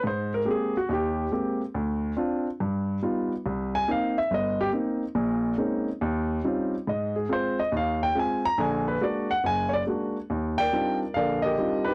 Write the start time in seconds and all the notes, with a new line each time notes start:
0.03 G#2 B4 C5
0.34 A#4
0.45 G#3 A#3 C4 G4
0.51 G#4
0.77 F#4
0.89 D#2 G4
1.32 G#3 A#3 C4 G4
1.74 D2
2.17 C4 D4 F4
2.60 G2
3.03 G3 B3 D#4 F4
3.46 C2
3.75 G#5
3.88 A#3 C4 D#4 F5
4.18 E5
4.31 G1 D#5
4.61 G4
4.73 A#3 C4 D#4
5.15 A#1 A#2
5.58 G#3 A#3 C4 C#4 D#4
6.01 D#2
6.44 G3 C4 C#4 D#4 F4
6.87 G#2 D#5
7.16 G#4
7.29 G#3 C4 F4 C5
7.59 D#5
7.72 D#2
7.77 F5
8.03 G5
8.15 G#3 C4 F4
8.19 G#5
8.45 A#5
8.58 A#1 D3 G#5
8.88 B4
9.01 G#3 A#3 D4 F#4 D5
9.31 F#5
9.44 F#1 G#5
9.69 C#5
9.73 D5
9.87 G#3 A#3 D4 F#4
10.30 D#2
10.58 A#4 D5 G5
10.73 G3 C4 D4 D#4 F4
11.14 A#1 D3 A#4 D5 F5
11.42 G4 A#4 D#5
11.58 G3 C4 D4 D#4 F4
11.85 D#4 G4 B4